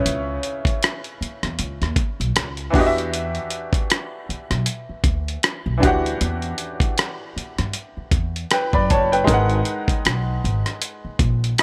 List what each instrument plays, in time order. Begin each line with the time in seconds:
Already playing: upright piano C#3 C#4 E4 B4 C#5
0.06 upright bass C#2, closed hi-hat
0.43 closed hi-hat
0.65 kick, closed hi-hat
0.83 cross-stick, closed hi-hat
1.04 closed hi-hat
1.21 muted upright bass stroke, closed hi-hat
1.43 upright bass E2, cross-stick, closed hi-hat
1.59 upright bass C#2, closed hi-hat
1.82 upright bass D#2, cross-stick, closed hi-hat
1.96 kick, closed hi-hat
2.20 upright bass B1, closed hi-hat
2.36 upright bass C#2, cross-stick, closed hi-hat
2.57 closed hi-hat
2.70 upright piano E3 D4, kick
2.75 upright bass E2, upright piano F#4 G4, open hi-hat
2.80 upright piano D#5
2.87 upright piano E5
2.98 closed hi-hat
3.14 closed hi-hat
3.35 closed hi-hat
3.50 closed hi-hat
3.73 kick, closed hi-hat
3.90 cross-stick, closed hi-hat
4.29 muted upright bass stroke, closed hi-hat
4.51 upright bass B1, cross-stick, closed hi-hat
4.66 closed hi-hat
4.89 muted upright bass stroke
5.04 upright bass D2, kick, closed hi-hat
5.28 closed hi-hat
5.43 cross-stick, closed hi-hat
5.66 upright bass B1
5.78 upright piano E3 D4
5.82 upright bass D2, upright piano F#4 G4, kick, closed hi-hat
5.87 upright piano F#5
6.06 closed hi-hat
6.21 upright bass E2, closed hi-hat
6.42 closed hi-hat
6.58 closed hi-hat
6.80 kick, closed hi-hat
6.98 cross-stick, closed hi-hat
7.36 muted upright bass stroke, closed hi-hat
7.58 upright bass G2, cross-stick, closed hi-hat
7.73 closed hi-hat
7.97 muted upright bass stroke
8.11 upright bass E2, kick, closed hi-hat
8.36 closed hi-hat
8.51 upright piano B4 G5, cross-stick, closed hi-hat
8.73 upright bass F#2, upright piano D5 B5, kick
8.90 upright bass F#1, upright piano C#5 A5, kick, closed hi-hat
9.12 upright piano B4 G5, closed hi-hat
9.24 upright bass G#1, upright piano G#3 D#4, kick
9.28 upright piano A#4 B4, closed hi-hat
9.34 upright piano F#5
9.50 closed hi-hat
9.65 closed hi-hat
9.88 kick, closed hi-hat
10.05 upright bass B1, cross-stick, closed hi-hat
10.44 upright bass G#1, closed hi-hat
10.66 cross-stick, closed hi-hat
10.82 closed hi-hat
11.05 muted upright bass stroke
11.19 upright bass A#1, kick, closed hi-hat
11.44 closed hi-hat
11.58 upright piano B5, cross-stick, closed hi-hat